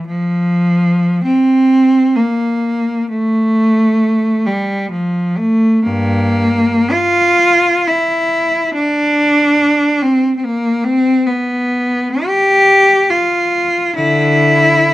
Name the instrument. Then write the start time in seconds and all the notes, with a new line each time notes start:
cello
0.07 F3
1.24 C4
2.16 A#3
3.10 A3
4.46 G3
4.91 F3
5.37 A3
5.84 G2 A#3
6.92 F4
7.87 E4
8.74 D4
10.02 C4
10.37 C4
10.45 A#3
10.84 C4
11.27 B3
12.26 G4
13.11 F4
13.95 D3 E4